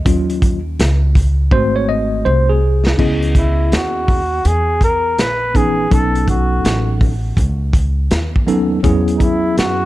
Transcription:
Already playing: D#5
0.05 D#2 F#3 C#4 F4, kick, closed hi-hat
0.30 closed hi-hat
0.42 kick, closed hi-hat
0.79 C#2, snare, closed hi-hat
1.15 kick, closed hi-hat
1.51 G#1 A3 C4 F#4 C5, kick
1.76 C#5
1.89 D#5
2.25 C2 C5
2.49 G#4
2.87 snare
2.98 C#2 B3 C#4 E4 G#4 D#5, kick, crash
3.22 closed hi-hat
3.35 E4, kick, closed hi-hat
3.72 D#2 F#4, snare, closed hi-hat
4.08 kick, open hi-hat
4.45 E2 G#4, closed hi-hat
4.81 A#4, kick, closed hi-hat
5.18 A#1 B4, snare, closed hi-hat
5.54 E3 B3 C#4 D#4 G#4 B4, kick, closed hi-hat
5.91 B1 F#3 B3 C#4 D#4 A4, kick, closed hi-hat
6.15 closed hi-hat
6.28 F#4, kick, closed hi-hat
6.64 A1, snare, closed hi-hat
7.01 kick, open hi-hat
7.37 C#2, kick, closed hi-hat
7.73 kick, closed hi-hat
8.11 D#2, snare, closed hi-hat
8.36 kick
8.47 F#3 B3 C#4 D#4 A4, closed hi-hat
8.83 E2 F#3 B3 C#4 E4 G#4, kick, closed hi-hat
9.08 closed hi-hat
9.18 D#4, kick, closed hi-hat
9.22 E4
9.57 F#2 F#4, snare, closed hi-hat

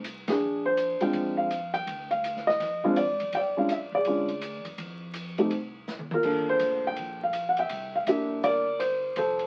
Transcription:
Already playing: C2
0.04 hi-hat pedal, ride
0.28 D4 G#4, snare, ride
0.40 A#1
0.66 C5
0.77 hi-hat pedal, ride
1.01 G#3 C4 D4 F4 G5, muted upright bass stroke, ride
1.13 F2, kick, ride
1.37 F5
1.51 hi-hat pedal, ride
1.74 G5, ride
1.87 D2, kick, ride
2.11 F5, ride
2.24 hi-hat pedal, ride
2.36 snare
2.47 D#5, snare
2.60 F2, kick, snare, ride
2.84 G#3 C4 D4 F4 F5, kick
2.96 D5, hi-hat pedal, ride
3.09 G#2
3.20 F#2, ride
3.33 B1 G5, kick, ride
3.37 D5
3.57 G#3 C#4 D4 F4 F5
3.69 E5, hi-hat pedal, ride
3.92 C2 D5
3.96 G#4
4.05 D2 G#3 C#4 D4 F4, kick, ride
4.28 ride
4.41 hi-hat pedal, ride
4.65 F#2, ride
4.78 F2, kick, ride
5.14 hi-hat pedal, ride
5.38 A3 C4 D#4 G4, ride
5.51 C2, kick, ride
5.88 snare, hi-hat pedal
5.99 mid tom
6.11 F4 A#4, mid tom
6.23 G1 A#3 D4 F4 A4, kick, crash
6.49 C5
6.59 F1, hi-hat pedal, ride
6.87 G5
6.96 A#1, kick, ride
7.23 F5
7.33 hi-hat pedal, ride
7.49 F#5
7.57 E5 G5, ride
7.69 C2, kick, ride
7.96 F5
8.07 B1 A#3 D4 E4 G4 E5, hi-hat pedal, ride
8.43 G1 A#4 D5, kick, ride
8.79 C5, hi-hat pedal, ride
9.16 F1 A4 C5, kick, ride
9.39 ride

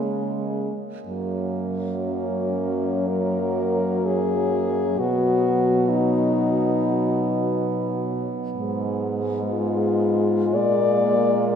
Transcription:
Already playing: C#3 G#3
0.02 G#3
1.07 F#2 F#3 A#3
2.04 C#4
3.08 A#4
4.06 G#4
4.99 B2 F#3 B3 F#4
5.89 D#4
8.57 G#2 G#3
9.50 F4
10.54 A#2 A#3 D5

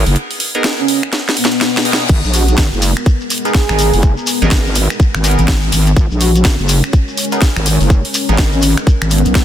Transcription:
0.06 F#1, open hi-hat
0.16 closed hi-hat
0.31 open hi-hat
0.40 open hi-hat
0.55 B3 D#4 G#4 A#4, closed hi-hat
0.64 snare, closed hi-hat
0.79 C#4
0.88 open hi-hat
1.03 finger snap, closed hi-hat
1.13 snare, closed hi-hat, reverse cymbal
1.29 snare
1.37 B3, open hi-hat
1.44 snare, closed hi-hat
1.52 closed hi-hat
1.61 snare, closed hi-hat
1.77 snare
1.85 B3 D#4 G#4 A#4, open hi-hat
1.93 snare
2.00 closed hi-hat
2.09 G#1 G#3 B3 A#4, kick, closed hi-hat, crash, shekere
2.24 A#1, shekere
2.34 F#4, open hi-hat, shekere
2.48 F#4, closed hi-hat, shekere
2.58 G#1, kick, snare, closed hi-hat, shekere
2.73 F#1, shekere
2.82 open hi-hat, shekere
2.97 finger snap, shekere
3.06 kick, closed hi-hat, shekere
3.21 shekere
3.30 open hi-hat, shekere
3.38 closed hi-hat
3.45 B3 D#4 G#4 A#4, closed hi-hat, shekere
3.54 kick, snare, closed hi-hat, shekere
3.69 G#1 B3 D#4 G#4 A#4, finger snap, shekere
3.79 open hi-hat, shekere
3.93 F#1, open hi-hat, shekere
4.02 kick, closed hi-hat, shekere
4.17 shekere
4.27 open hi-hat, shekere
4.42 G#1 B3 D#4 G#4 A#4, closed hi-hat, shekere
4.51 kick, snare, closed hi-hat, shekere
4.67 shekere
4.75 open hi-hat, shekere
4.90 finger snap, closed hi-hat, shekere
5.00 kick, closed hi-hat, shekere
5.15 G#1, finger snap, shekere
5.24 B3 D#4 G#4 A#4, open hi-hat, shekere
5.31 closed hi-hat
5.38 G#1, closed hi-hat, shekere
5.48 kick, snare, closed hi-hat, shekere
5.62 shekere
5.72 G#1, open hi-hat, shekere
5.87 closed hi-hat, shekere
5.96 G#1 C#4, kick, closed hi-hat, shekere
6.11 A#1, shekere
6.21 F#4, open hi-hat, shekere
6.35 F#4, closed hi-hat, shekere
6.45 G#1, kick, snare, closed hi-hat, shekere
6.59 F#1, shekere
6.69 open hi-hat, shekere
6.84 finger snap, shekere
6.93 kick, closed hi-hat, shekere
7.08 shekere
7.17 open hi-hat, shekere
7.25 closed hi-hat
7.32 B3 D#4 G#4 A#4, closed hi-hat, shekere
7.42 kick, snare, closed hi-hat, shekere
7.56 G#1, finger snap, shekere
7.66 open hi-hat, shekere
7.81 F#1, open hi-hat, shekere
7.90 kick, closed hi-hat, shekere
8.05 open hi-hat, shekere
8.14 open hi-hat, shekere
8.29 G#1 B3 D#4 G#4 A#4, closed hi-hat, shekere
8.38 kick, snare, closed hi-hat, shekere
8.53 C#4, shekere
8.62 open hi-hat, shekere
8.77 finger snap, shekere
8.87 kick, closed hi-hat, shekere
9.02 G#1, finger snap, shekere
9.11 B3, open hi-hat, shekere
9.18 closed hi-hat
9.25 B1, closed hi-hat, shekere
9.35 kick, snare, closed hi-hat, shekere

